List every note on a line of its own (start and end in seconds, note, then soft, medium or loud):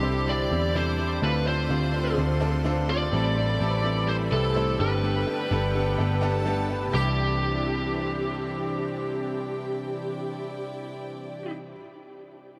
0.00 0.48 C2 loud
0.00 1.24 G2 medium
0.00 1.18 D3 medium
0.00 1.21 G3 medium
0.00 0.02 C4 medium
0.00 1.21 C4 medium
0.00 0.22 C4 medium
0.00 0.02 D4 medium
0.00 0.23 D4 medium
0.00 0.03 E4 medium
0.00 1.21 E4 medium
0.00 0.23 E4 medium
0.00 0.28 G4 loud
0.00 0.31 G4 medium
0.00 0.23 A4 medium
0.00 0.25 C5 medium
0.00 0.27 C5 medium
0.00 0.25 C6 medium
0.04 0.25 G3 medium
0.04 0.26 D4 medium
0.04 0.28 E4 medium
0.26 0.51 G3 medium
0.26 0.47 C4 medium
0.26 0.47 D4 medium
0.26 0.51 D4 medium
0.26 0.47 E4 medium
0.26 0.50 E4 medium
0.26 0.47 G4 medium
0.26 0.49 C5 medium
0.26 1.21 D5 medium
0.26 0.77 D5 loud
0.26 1.21 D6 medium
0.50 1.19 E2 medium
0.50 0.74 G3 medium
0.50 0.70 C4 medium
0.50 0.71 D4 medium
0.50 0.75 D4 medium
0.50 0.71 E4 medium
0.50 0.75 E4 medium
0.50 0.71 G4 loud
0.50 0.74 C5 medium
0.74 0.98 C3 medium
0.74 0.99 E3 loud
0.74 0.99 G3 loud
0.74 0.94 C4 medium
0.74 0.94 D4 medium
0.74 0.99 D4 loud
0.74 0.95 E4 medium
0.74 0.98 E4 loud
0.74 0.95 A4 loud
0.74 1.20 C5 loud
0.74 0.97 C5 medium
0.97 1.22 G3 medium
0.97 1.18 C4 medium
0.97 1.18 D4 medium
0.97 1.22 D4 medium
0.97 1.18 E4 medium
0.97 1.23 E4 medium
0.97 1.19 G4 medium
0.97 1.22 C5 medium
1.21 1.67 D2 loud
1.21 1.90 A2 medium
1.21 1.46 D3 medium
1.21 3.11 D3 medium
1.21 1.46 A3 medium
1.21 6.90 A3 medium
1.21 1.42 C4 medium
1.21 4.76 C4 medium
1.21 1.46 C4 medium
1.21 1.42 D4 medium
1.21 1.42 F4 medium
1.21 3.11 F4 medium
1.21 1.46 F4 medium
1.21 1.43 A4 loud
1.21 1.45 B4 loud
1.21 3.09 C5 medium
1.21 1.44 C5 medium
1.21 3.09 C6 medium
1.45 1.66 C4 medium
1.45 1.69 C4 soft
1.45 1.66 D4 medium
1.45 1.66 F4 medium
1.45 1.70 F4 medium
1.45 1.66 A4 medium
1.45 1.70 C5 medium
1.45 2.14 C5 medium
1.69 2.15 D2 loud
1.69 1.93 D3 loud
1.69 1.94 A3 loud
1.69 1.89 C4 medium
1.69 1.94 C4 loud
1.69 1.90 D4 medium
1.69 1.90 F4 medium
1.69 1.93 F4 loud
1.69 1.90 G4 medium
1.69 1.92 C5 loud
1.92 2.13 C4 medium
1.92 2.17 C4 medium
1.92 2.13 D4 medium
1.92 2.14 F4 medium
1.92 2.18 F4 medium
1.92 2.14 A4 medium
1.92 2.17 C5 medium
2.16 3.09 D2 loud
2.16 2.41 A3 medium
2.16 2.37 C4 medium
2.16 2.42 C4 medium
2.16 2.37 D4 medium
2.16 2.37 F4 medium
2.16 2.41 F4 medium
2.16 2.38 A4 medium
2.16 2.39 C5 medium
2.40 2.61 C4 loud
2.40 2.64 C4 medium
2.40 2.61 D4 loud
2.40 2.61 F4 loud
2.40 2.65 F4 medium
2.40 2.61 A4 loud
2.40 2.65 C5 medium
2.64 2.89 D3 loud
2.64 2.89 A3 medium
2.64 2.85 C4 loud
2.64 2.89 C4 loud
2.64 2.85 D4 loud
2.64 2.85 F4 medium
2.64 2.88 F4 loud
2.64 2.85 A4 loud
2.64 2.87 C5 loud
2.88 3.08 C4 medium
2.88 3.12 C4 medium
2.88 3.08 D4 medium
2.88 3.09 F4 medium
2.88 3.13 F4 medium
2.88 3.09 A4 medium
2.88 3.12 C5 medium
2.88 4.12 D5 loud
3.12 3.57 A1 loud
3.12 3.36 A2 medium
3.12 3.80 A2 medium
3.12 4.78 E3 medium
3.12 3.37 E3 medium
3.12 3.80 E3 medium
3.12 3.37 G3 medium
3.12 3.32 C4 loud
3.12 3.37 C4 loud
3.12 3.32 E4 medium
3.12 3.36 E4 medium
3.12 6.90 G4 medium
3.12 3.33 G4 medium
3.12 3.33 A4 loud
3.12 3.34 A4 medium
3.12 4.30 B4 medium
3.12 4.29 B5 medium
3.35 3.60 G3 medium
3.35 3.56 C4 medium
3.35 3.60 C4 medium
3.35 3.56 E4 medium
3.35 3.61 E4 medium
3.35 3.57 G4 medium
3.35 3.60 A4 medium
3.35 3.57 A4 medium
3.60 4.28 A1 loud
3.60 3.84 A2 loud
3.60 3.84 E3 loud
3.60 3.85 G3 medium
3.60 3.80 C4 loud
3.60 3.84 C4 loud
3.60 3.80 E4 medium
3.60 3.83 E4 loud
3.60 3.81 G4 medium
3.60 3.81 A4 loud
3.60 3.82 A4 loud
3.83 4.06 G3 medium
3.83 4.04 C4 loud
3.83 4.07 C4 medium
3.83 4.04 E4 medium
3.83 4.08 E4 medium
3.83 4.04 G4 medium
3.83 4.08 A4 medium
3.83 4.05 A4 loud
4.07 4.31 G3 medium
4.07 4.28 C4 medium
4.07 4.32 C4 medium
4.07 4.28 E4 medium
4.07 4.31 E4 medium
4.07 4.28 G4 medium
4.07 4.28 A4 medium
4.07 4.30 A4 medium
4.07 4.15 C5 medium
4.31 4.76 C2 medium
4.31 4.55 G3 medium
4.31 4.51 C4 medium
4.31 4.55 C4 medium
4.31 4.52 E4 medium
4.31 4.56 E4 medium
4.31 4.52 G4 loud
4.31 4.55 A4 medium
4.31 4.78 A4 medium
4.31 4.80 A4 medium
4.31 4.52 B4 loud
4.31 4.78 A5 loud
4.55 4.79 A2 loud
4.55 4.79 E3 medium
4.55 4.80 G3 loud
4.55 4.75 C4 medium
4.55 4.80 C4 loud
4.55 4.75 E4 medium
4.55 4.80 E4 loud
4.55 4.76 G4 medium
4.55 4.78 A4 loud
4.55 4.76 C5 loud
4.78 5.24 G1 loud
4.78 5.47 G2 medium
4.78 6.92 D3 medium
4.78 5.47 D3 medium
4.78 5.19 B3 medium
4.78 6.91 B3 medium
4.78 5.19 D4 medium
4.78 5.03 D4 soft
4.78 6.19 G4 medium
4.78 5.19 G4 medium
4.78 5.03 G4 medium
4.78 5.03 A4 medium
4.78 5.19 A4 medium
4.78 6.43 B4 medium
4.78 6.19 G5 medium
5.02 5.27 G3 medium
5.02 5.27 B3 medium
5.02 5.27 D4 medium
5.02 5.27 G4 medium
5.02 5.25 A4 medium
5.26 5.46 B3 medium
5.26 5.47 D4 medium
5.26 5.50 D4 medium
5.26 5.47 G4 medium
5.26 5.51 G4 medium
5.26 5.50 A4 medium
5.26 5.47 B4 medium
5.50 5.96 G1 loud
5.50 5.74 G3 medium
5.50 5.70 B3 medium
5.50 5.75 B3 loud
5.50 5.70 D4 medium
5.50 5.75 D4 loud
5.50 5.71 G4 medium
5.50 5.75 G4 loud
5.50 5.71 A4 loud
5.50 5.73 A4 loud
5.74 5.94 B3 medium
5.74 5.94 D4 medium
5.74 5.98 D4 medium
5.74 5.95 G4 medium
5.74 5.99 G4 medium
5.74 5.98 A4 medium
5.74 5.95 A4 loud
5.98 6.90 G1 loud
5.98 6.18 B3 medium
5.98 6.22 B3 medium
5.98 6.18 D4 medium
5.98 6.23 D4 medium
5.98 6.18 G4 medium
5.98 6.22 G4 medium
5.98 6.19 A4 medium
5.98 6.20 A4 medium
6.21 6.42 B3 loud
6.21 6.42 D4 loud
6.21 6.46 D4 medium
6.21 6.42 G4 loud
6.21 6.46 G4 medium
6.21 6.46 A4 medium
6.21 6.92 A4 medium
6.21 6.42 A4 loud
6.21 6.92 A5 loud
6.45 6.70 G3 loud
6.45 6.65 B3 loud
6.45 6.70 B3 medium
6.45 6.66 D4 loud
6.45 6.70 D4 loud
6.45 6.66 G4 loud
6.45 6.70 G4 loud
6.45 6.66 A4 loud
6.45 6.68 A4 loud
6.69 6.89 B3 medium
6.69 6.90 D4 medium
6.69 6.95 D4 soft
6.69 6.90 G4 medium
6.69 6.94 G4 medium
6.69 6.93 A4 medium
6.69 6.90 B4 loud
6.88 11.73 C3 medium
6.88 11.72 C4 medium
6.93 11.76 C2 medium
6.93 11.76 C2 loud
6.93 11.79 E3 medium
6.93 11.51 E3 medium
6.93 11.51 C4 medium
6.93 11.50 D4 medium
6.93 11.75 D4 medium
6.93 11.51 E4 medium
6.93 11.50 G4 medium
6.93 11.51 G4 medium
6.93 11.51 D5 medium
6.93 11.51 G5 medium
6.97 11.83 G3 medium
6.97 11.79 E4 medium
7.01 11.87 C4 medium
7.01 11.91 E4 medium
7.09 11.94 D5 medium